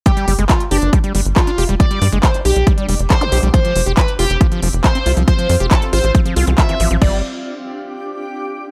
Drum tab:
CC |----------------|----------------|----------------|----------------|
HH |xxoxxxoxxxoxxxox|xxoxxxoxxxoxxxox|xxoxxxoxxxoxxxox|xxoxxxoxxxoxxxox|
CP |----x-------x---|----x-------x---|----x-------x---|----x-------x---|
BD |o---o---o---o---|o---o---o---o---|o---o---o---o---|o---o---o---o---|

CC |x---------------|
HH |----------------|
CP |----------------|
BD |o---------------|